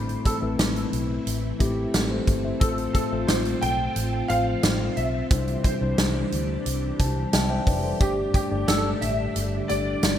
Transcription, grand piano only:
0.00 0.27 C5 medium
0.25 0.89 A4 medium
2.60 2.92 A4 medium
2.93 3.29 A4 medium
3.27 3.59 C5 medium
3.61 4.31 G5 loud
4.28 4.93 F5 loud
4.96 5.66 E5 medium
5.63 6.28 C5 medium
8.00 8.32 G4 medium
8.34 8.69 G4 medium
8.68 8.99 A4 medium
9.01 9.71 E5 loud
9.68 10.19 D5 medium

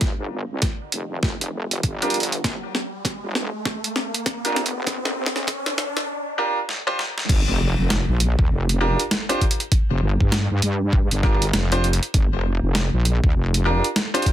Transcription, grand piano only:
2.02 2.14 D4 medium
2.02 2.14 F4 medium
2.02 2.14 G4 medium
2.02 2.14 A#4 medium
4.45 4.57 D4 medium
4.45 4.57 F4 medium
4.45 4.57 G4 medium
4.45 4.57 A#4 medium
6.38 6.57 D4 medium
6.38 6.57 F4 medium
6.38 6.57 G4 medium
6.38 6.57 A#4 medium
6.87 6.99 D4 medium
6.87 6.99 F4 medium
6.87 6.99 G4 medium
6.87 6.99 C5 loud
8.80 8.99 D4 medium
8.80 8.99 F4 medium
8.80 8.99 G4 medium
8.80 8.99 A#4 medium
9.29 9.42 D4 medium
9.29 9.41 F4 medium
9.29 9.42 G4 medium
9.29 9.42 C5 loud
11.23 11.42 D4 medium
11.23 11.42 F4 medium
11.23 11.42 G4 medium
11.23 11.42 A#4 medium
11.72 11.84 D4 loud
11.72 11.84 F4 medium
11.72 11.84 G4 medium
11.72 11.84 C5 loud
13.65 13.84 D4 medium
13.65 13.84 F4 medium
13.65 13.84 G4 medium
13.65 13.84 A#4 medium
14.14 14.26 D4 loud
14.14 14.26 F4 medium
14.14 14.26 G4 medium
14.14 14.26 C5 loud

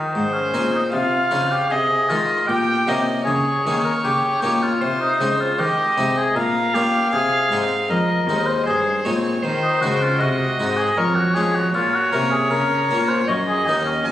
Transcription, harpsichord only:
0.00 0.11 D#3 soft
0.00 0.10 G#4 medium
0.15 0.50 G#2 soft
0.54 0.89 A#2 soft
0.54 1.10 C4 soft
0.54 1.10 D#4 soft
0.54 1.11 G#4 soft
0.92 1.28 C3 soft
1.31 1.67 C#3 soft
1.31 1.59 C4 soft
1.31 1.59 D#4 soft
1.31 1.60 G#4 soft
1.71 2.06 C3 soft
2.10 2.45 D#3 soft
2.10 2.38 G#3 soft
2.10 2.38 D#4 soft
2.49 2.84 A#2 soft
2.88 3.22 C3 soft
2.88 3.44 A#3 soft
2.88 3.44 C#4 soft
2.88 3.44 D#4 soft
3.27 3.62 C#3 soft
3.67 4.01 D#3 soft
3.67 4.22 A#3 soft
3.67 4.22 C#4 soft
3.67 4.23 D#4 soft
4.05 4.39 C#3 soft
4.42 4.77 A#2 soft
4.42 4.70 A#3 soft
4.42 4.71 C#4 soft
4.42 4.71 D#4 soft
4.82 5.16 C3 soft
5.21 5.55 C#3 soft
5.21 5.76 G#3 soft
5.21 5.77 C4 soft
5.21 5.77 D#4 soft
5.59 5.94 D#3 soft
5.98 6.32 C3 soft
5.98 6.25 G#3 soft
5.98 6.25 C4 soft
5.98 6.26 D#4 soft
6.36 6.71 A#2 soft
6.75 7.09 A#3 soft
6.75 7.03 C#4 soft
6.75 7.03 F4 soft
7.13 7.48 C3 soft
7.52 7.86 G#2 soft
7.52 8.07 G#3 soft
7.52 8.07 C4 soft
7.52 8.08 D#4 soft
7.91 8.25 F2 soft
8.29 8.63 D#2 soft
8.29 8.84 G#3 soft
8.29 8.84 C4 soft
8.29 8.85 D#4 soft
8.67 9.02 G2 soft
9.05 9.40 A#2 soft
9.05 9.33 G#3 soft
9.05 9.33 C4 soft
9.05 9.33 D#4 soft
9.44 9.78 D#3 soft
9.83 10.17 C#3 soft
9.83 10.38 G#3 soft
9.83 10.38 C4 soft
9.83 10.38 D#4 soft
10.21 10.55 C3 soft
10.59 10.94 G#2 soft
10.59 10.87 G#3 soft
10.59 10.87 C4 soft
10.59 10.88 D#4 soft
10.97 11.32 F2 soft
11.36 11.71 F3 medium
11.36 11.64 G#3 soft
11.36 11.64 C#4 soft
11.74 12.09 A#2 medium
12.13 12.48 C3 medium
12.13 12.69 A#3 soft
12.13 12.69 C#4 soft
12.51 12.86 C#3 soft
12.91 13.25 A#2 soft
12.91 13.19 A#3 soft
12.91 13.19 C#4 soft
13.29 13.64 F#2 soft
13.68 14.02 D#2 soft
13.68 13.96 A#3 soft
13.68 13.96 D#4 soft
14.06 14.12 F2 medium

